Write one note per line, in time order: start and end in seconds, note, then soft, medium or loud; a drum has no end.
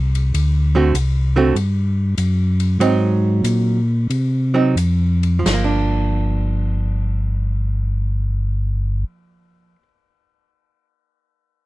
0.00 0.32 C2 medium
0.15 ride soft
0.34 0.93 D2 medium
0.34 ride medium
0.75 0.93 D3 medium
0.75 0.93 A3 medium
0.75 0.93 C4 medium
0.75 0.93 F#4 medium
0.94 1.53 C2 medium
0.94 hi-hat pedal medium
0.94 ride medium
1.36 1.54 D3 medium
1.36 1.54 A3 medium
1.36 1.54 C4 medium
1.36 1.54 F#4 medium
1.54 2.15 G2 medium
1.54 ride medium
2.17 2.78 F#2 medium
2.17 hi-hat pedal soft
2.17 ride medium
2.60 ride soft
2.79 3.42 G#2 medium
2.79 3.79 F#3 medium
2.79 3.79 C4 medium
2.79 3.79 D#4 medium
2.79 ride medium
3.44 4.07 A#2 medium
3.44 hi-hat pedal medium
3.44 ride medium
4.10 4.75 C3 medium
4.10 ride medium
4.54 4.74 F#3 medium
4.54 4.74 C4 medium
4.54 4.75 D#4 medium
4.75 5.43 F2 medium
4.75 hi-hat pedal medium
4.75 ride medium
5.23 ride soft
5.39 9.75 F3 medium
5.45 9.04 G1 medium
5.45 snare medium
5.45 crash medium
5.53 9.82 A#3 medium
5.64 9.88 D4 medium